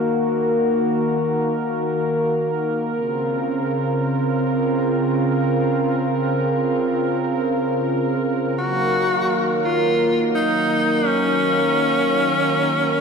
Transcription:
Already playing: D#3 A#3 F#4 A#4
2.94 C#3 C4 F4
8.59 D#3 F#3 A#3 F#4
9.65 F4
10.35 D#4
11.06 C#4

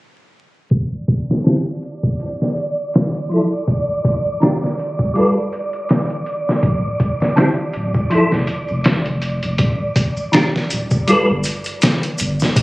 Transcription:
0.71 D5, kick, closed hi-hat
1.08 kick, closed hi-hat
1.31 snare
1.44 D3 C4 E4 F4, snare, closed hi-hat
1.49 G4
1.83 closed hi-hat
2.03 kick
2.20 closed hi-hat
2.42 snare
2.57 closed hi-hat
2.94 snare, closed hi-hat
3.15 closed hi-hat
3.29 F3 E4, closed hi-hat
3.33 A4
3.52 closed hi-hat
3.68 kick, closed hi-hat
4.05 kick, closed hi-hat
4.40 D#3 D4 F4, snare, closed hi-hat
4.45 G4
4.64 snare
4.79 closed hi-hat
4.99 kick
5.14 G3 F4 A4, closed hi-hat
5.19 B4
5.53 closed hi-hat
5.73 closed hi-hat
5.89 snare, closed hi-hat
6.10 closed hi-hat
6.26 closed hi-hat
6.49 snare
6.63 D1, kick, closed hi-hat, maracas
6.99 kick, closed hi-hat, maracas
7.20 snare, maracas
7.36 D3 C4 E4 F4, snare, closed hi-hat, maracas
7.41 G4
7.73 D1, closed hi-hat, maracas
7.94 kick, maracas
8.10 F3 E4, closed hi-hat, maracas
8.15 A4
8.32 F1, snare
8.47 closed hi-hat, maracas
8.68 F1, maracas
8.84 snare, closed hi-hat, maracas
9.06 closed hi-hat
9.22 closed hi-hat, maracas
9.43 F1, closed hi-hat, maracas
9.58 D#1, kick, closed hi-hat, maracas
9.96 kick, closed hi-hat, maracas
10.17 maracas
10.32 D#3 D4 F4, snare, closed hi-hat, maracas
10.36 G4
10.56 snare
10.70 D#1, closed hi-hat, maracas
10.91 kick, maracas
11.07 G3 F4 A4, closed hi-hat, maracas
11.12 B4
11.30 G1
11.44 closed hi-hat, maracas
11.64 closed hi-hat, maracas
11.81 snare, closed hi-hat, maracas
12.03 closed hi-hat
12.18 G1, closed hi-hat, maracas
12.40 snare, maracas
12.56 D1, kick, closed hi-hat, maracas

